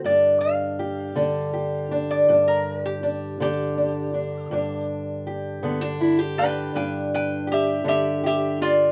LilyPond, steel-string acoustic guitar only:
\new Staff \with { instrumentName = "Steel-string acoustic guitar" } { \time 12/8 \key g \major \tempo 4. = 54 << { d'4 g'8 d'8 g'8 d'8 d'4 d'8 d'8 d'8 d'8 | d'4 g'8 b16 d'16 e'16 g'16 d'8 d'4 g'8 d'8 g'8 d'8 | } \\ { <g, d>4. d4. g,4. d4. | g,4. d4. g,4. d4. | } >> }